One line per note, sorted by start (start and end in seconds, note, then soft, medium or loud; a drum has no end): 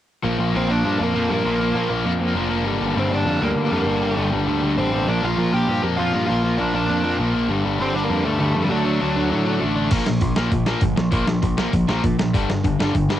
0.23 0.38 A#1 medium
0.23 0.39 A#2 medium
0.23 0.39 F3 loud
0.23 0.38 A#3 medium
0.39 0.53 A#1 medium
0.39 0.53 A#2 medium
0.39 0.53 F3 medium
0.39 0.54 A#3 medium
0.53 0.82 A#1 medium
0.53 0.69 A#2 medium
0.53 0.68 F3 medium
0.53 0.68 A#3 medium
0.53 0.69 C4 medium
0.53 0.71 C5 medium
0.69 0.83 A#2 medium
0.69 0.83 F3 medium
0.69 0.84 A#3 medium
0.69 0.98 D4 medium
0.69 1.01 D5 loud
0.84 0.99 G2 medium
0.84 0.99 A#2 loud
0.84 0.99 F3 medium
0.84 0.99 A#3 loud
0.99 1.14 F2 medium
0.99 1.13 A#2 medium
0.99 1.14 F3 medium
0.99 1.15 A#3 medium
0.99 1.29 A#3 medium
0.99 1.32 A#4 medium
1.15 1.29 F2 medium
1.15 1.30 A#2 medium
1.15 1.29 F3 medium
1.15 1.29 A#3 medium
1.30 1.44 G2 medium
1.30 1.44 A#2 medium
1.30 1.45 F3 medium
1.30 1.46 A#3 medium
1.30 1.87 A#3 medium
1.30 1.88 A#4 medium
1.44 1.73 A#1 loud
1.44 1.60 A#2 medium
1.44 1.60 F3 loud
1.44 1.60 A#3 loud
1.60 1.74 A#2 medium
1.60 1.75 F3 medium
1.60 1.76 A#3 medium
1.74 1.89 A#1 medium
1.74 1.90 A#2 medium
1.74 1.90 F3 medium
1.74 1.90 A#3 loud
1.90 2.04 A#1 medium
1.90 2.04 A#2 medium
1.90 2.05 F3 medium
1.90 2.06 A#3 medium
2.05 2.33 F2 medium
2.05 2.20 A#2 medium
2.05 2.19 F3 medium
2.05 2.20 A#3 loud
2.20 2.34 A#2 medium
2.20 2.35 F3 medium
2.20 2.36 A#3 medium
2.35 2.66 F1 medium
2.35 2.50 A#2 medium
2.35 2.49 F3 medium
2.35 2.50 A#3 medium
2.50 2.65 A#2 medium
2.50 2.65 F3 medium
2.50 5.08 A#3 medium
2.65 2.80 G1 medium
2.65 2.82 G2 medium
2.65 2.81 D3 medium
2.65 2.81 G3 loud
2.81 2.95 G1 medium
2.81 2.95 G2 medium
2.81 2.95 D3 medium
2.81 2.96 G3 medium
2.96 3.24 G1 medium
2.96 3.11 G2 medium
2.96 3.10 D3 medium
2.96 3.10 G3 medium
2.96 3.11 C4 medium
2.96 3.13 C5 medium
3.11 3.25 G2 medium
3.11 3.25 D3 medium
3.11 3.26 G3 medium
3.11 3.40 D4 medium
3.11 3.44 D5 medium
3.25 3.40 F2 medium
3.25 3.42 G2 loud
3.25 3.41 D3 medium
3.25 3.40 G3 medium
3.41 3.55 D2 medium
3.41 3.56 G2 medium
3.41 3.56 D3 medium
3.41 3.56 G3 medium
3.41 3.70 A#3 medium
3.41 3.72 A#4 medium
3.55 3.70 D2 loud
3.55 3.71 G2 medium
3.55 3.71 D3 medium
3.55 3.70 G3 medium
3.71 3.85 F2 medium
3.71 3.85 G2 medium
3.71 3.86 D3 medium
3.71 3.86 G3 medium
3.71 4.29 A#3 medium
3.71 4.13 A#4 medium
3.86 4.15 G1 loud
3.86 4.02 G2 medium
3.86 4.01 D3 loud
3.86 4.00 G3 loud
4.02 4.16 G2 medium
4.02 4.17 D3 medium
4.02 4.17 G3 medium
4.13 4.29 A4 medium
4.17 4.31 G1 medium
4.17 4.32 G2 medium
4.17 4.32 D3 medium
4.17 4.31 G3 loud
4.32 4.47 G1 medium
4.32 4.46 G2 medium
4.32 4.46 D3 medium
4.32 4.47 G3 medium
4.47 4.76 D2 medium
4.47 4.63 G2 medium
4.47 4.62 D3 medium
4.47 4.62 G3 medium
4.63 4.77 G2 medium
4.63 4.78 D3 medium
4.63 4.78 G3 medium
4.78 5.06 A1 medium
4.78 4.93 G2 medium
4.78 4.92 D3 medium
4.78 4.92 G3 medium
4.78 5.07 C4 medium
4.78 5.09 C5 medium
4.93 5.08 G2 medium
4.93 5.06 D3 medium
4.93 5.07 G3 medium
5.07 5.22 A#1 medium
5.07 5.23 A#2 medium
5.07 5.23 F3 medium
5.07 5.22 A#3 medium
5.07 5.23 D4 medium
5.07 5.25 D5 medium
5.22 5.37 A#1 medium
5.22 5.37 A#2 medium
5.22 5.38 F3 medium
5.22 5.38 A#3 medium
5.22 5.54 F5 loud
5.26 5.53 F4 medium
5.37 5.66 A#1 medium
5.37 5.52 A#2 medium
5.37 5.52 F3 medium
5.37 5.52 A#3 loud
5.52 5.66 A#2 medium
5.52 5.67 F3 medium
5.52 5.68 A#3 medium
5.52 5.83 G4 medium
5.52 5.82 G5 loud
5.67 5.83 G2 medium
5.67 5.82 A#2 medium
5.67 5.82 F3 loud
5.67 5.82 A#3 loud
5.83 5.98 F2 medium
5.83 5.96 A#2 medium
5.83 5.97 F3 medium
5.83 5.98 A#3 medium
5.97 6.13 F2 loud
5.97 6.13 A#2 medium
5.97 6.12 F3 medium
5.97 6.12 A#3 loud
5.97 6.27 F4 medium
5.97 6.25 F5 loud
6.13 6.28 G2 medium
6.13 6.26 A#2 medium
6.13 6.27 F3 medium
6.13 6.28 A#3 medium
6.27 6.58 A#1 medium
6.27 6.43 A#2 medium
6.27 6.43 F3 loud
6.27 6.43 A#3 medium
6.27 6.57 F4 medium
6.27 6.59 F5 medium
6.43 6.57 A#2 medium
6.43 6.58 F3 medium
6.43 6.59 A#3 medium
6.58 6.74 A#1 loud
6.58 6.74 A#2 medium
6.58 6.73 F3 medium
6.58 6.73 A#3 loud
6.58 6.74 D4 medium
6.58 6.74 D5 medium
6.74 6.88 A#1 medium
6.74 6.88 A#2 medium
6.74 6.88 F3 medium
6.74 6.89 A#3 medium
6.74 7.17 D4 medium
6.74 7.17 D5 medium
6.89 7.17 F2 medium
6.89 7.03 A#2 loud
6.89 7.03 F3 loud
6.89 7.02 A#3 loud
7.04 7.18 A#2 medium
7.04 7.18 F3 medium
7.04 7.19 A#3 medium
7.19 7.48 A#1 loud
7.19 7.34 A#2 medium
7.19 7.34 F3 medium
7.19 7.33 A#3 medium
7.34 7.49 A#2 medium
7.34 7.49 F3 medium
7.34 7.49 A#3 medium
7.49 7.63 G1 medium
7.49 7.65 G2 loud
7.49 7.64 D3 medium
7.49 7.64 G3 loud
7.65 7.79 G1 medium
7.65 7.78 G2 medium
7.65 7.79 D3 medium
7.65 7.79 G3 medium
7.79 8.08 G1 medium
7.79 7.95 G2 medium
7.79 7.94 D3 medium
7.79 7.94 G3 loud
7.79 7.95 C4 medium
7.79 7.96 C5 medium
7.95 8.09 G2 medium
7.95 8.10 D3 medium
7.95 8.10 G3 loud
7.95 8.03 D4 medium
7.95 8.03 D5 medium
8.04 8.24 A#3 medium
8.04 8.25 A#4 medium
8.10 8.24 F2 medium
8.10 8.25 G2 medium
8.10 8.24 D3 loud
8.10 8.24 G3 loud
8.25 8.40 D2 medium
8.25 8.38 G2 medium
8.25 8.39 D3 medium
8.25 8.39 G3 medium
8.25 8.61 A3 medium
8.25 8.64 A4 medium
8.39 8.55 D2 medium
8.39 8.54 G2 medium
8.39 8.54 D3 medium
8.39 8.53 G3 medium
8.54 8.70 F2 medium
8.54 8.70 G2 medium
8.54 8.68 D3 medium
8.54 8.69 G3 medium
8.65 8.70 G3 medium
8.65 8.72 G4 medium
8.69 9.00 D2 medium
8.69 8.85 D3 medium
8.69 9.58 F#3 medium
8.69 8.85 A3 loud
8.69 8.84 D4 loud
8.69 9.62 F#4 medium
8.85 9.00 D3 medium
8.85 9.00 A3 medium
8.85 9.00 D4 medium
9.01 9.15 D2 medium
9.01 9.16 D3 medium
9.01 9.16 A3 medium
9.01 9.15 D4 loud
9.16 9.31 D2 medium
9.16 9.30 D3 medium
9.16 9.30 A3 medium
9.16 9.31 D4 medium
9.31 9.60 A2 medium
9.31 9.46 D3 loud
9.31 9.45 A3 loud
9.31 9.45 D4 loud
9.46 9.59 D3 medium
9.46 9.60 A3 medium
9.46 9.61 D4 medium
9.61 9.90 A1 medium
9.61 9.76 D3 medium
9.61 9.75 A3 medium
9.61 9.75 D4 medium
9.76 9.91 D3 medium
9.76 9.91 A3 medium
9.76 9.91 D4 medium
9.91 10.03 A#1 loud
9.91 10.05 A#2 medium
9.91 10.05 F3 medium
9.91 10.07 A#3 loud
9.91 kick loud
9.91 open hi-hat medium
9.91 crash loud
10.06 10.19 A#1 medium
10.06 10.20 A#2 medium
10.06 10.20 F3 medium
10.06 snare loud
10.21 10.33 A#1 medium
10.21 10.35 A#2 medium
10.21 10.36 F3 medium
10.21 kick loud
10.21 open hi-hat medium
10.36 10.49 A#1 medium
10.36 10.50 A#2 medium
10.36 10.51 F3 medium
10.36 10.52 A#3 medium
10.36 snare loud
10.52 10.75 A#1 medium
10.52 10.65 A#2 medium
10.52 10.66 F3 medium
10.52 kick medium
10.52 open hi-hat medium
10.66 10.80 A#2 medium
10.66 10.80 F3 medium
10.66 10.82 A#3 medium
10.66 snare loud
10.81 10.94 G1 loud
10.81 10.95 A#2 medium
10.81 10.95 F3 medium
10.81 kick loud
10.81 open hi-hat medium
10.96 11.09 A#1 medium
10.96 11.10 A#2 medium
10.96 11.10 F3 medium
10.96 snare loud
11.11 11.24 A#1 medium
11.11 11.25 A#2 medium
11.11 11.25 F3 loud
11.11 11.27 A#3 loud
11.11 kick loud
11.11 open hi-hat medium
11.26 11.39 A#1 medium
11.26 11.41 A#2 medium
11.26 11.41 F3 medium
11.26 snare loud
11.42 11.65 A#1 medium
11.42 11.56 A#2 medium
11.42 11.56 F3 medium
11.42 kick loud
11.42 open hi-hat medium
11.57 11.72 A#2 medium
11.57 11.72 F3 medium
11.57 11.72 A#3 loud
11.57 snare loud
11.73 11.85 A#1 medium
11.73 11.87 A#2 medium
11.73 11.87 F3 medium
11.73 kick loud
11.73 open hi-hat medium
11.88 12.00 A#1 medium
11.88 12.02 A#2 medium
11.88 12.02 F3 medium
11.88 12.03 A#3 medium
11.88 snare loud
12.03 12.17 A#2 medium
12.03 12.15 A#2 loud
12.03 12.17 F3 medium
12.03 kick loud
12.03 open hi-hat medium
12.19 12.30 A#1 medium
12.19 12.32 A#2 medium
12.19 12.33 F3 medium
12.19 snare loud
12.34 12.46 G1 medium
12.34 12.48 G2 loud
12.34 12.48 D3 medium
12.34 12.49 G3 medium
12.34 kick loud
12.34 open hi-hat medium
12.49 12.61 G1 medium
12.49 12.63 G2 medium
12.49 12.63 D3 medium
12.49 snare loud
12.64 12.76 G1 medium
12.64 12.78 G2 medium
12.64 12.78 D3 loud
12.64 kick loud
12.64 open hi-hat medium
12.79 12.91 G1 medium
12.79 12.94 G2 medium
12.79 12.94 D3 medium
12.79 12.94 G3 loud
12.79 snare loud
12.95 13.17 G1 medium
12.95 13.08 G2 medium
12.95 13.09 D3 medium
12.95 kick loud
12.95 open hi-hat medium
13.09 13.20 G2 medium
13.09 13.20 D3 medium
13.09 13.20 G3 loud
13.09 snare loud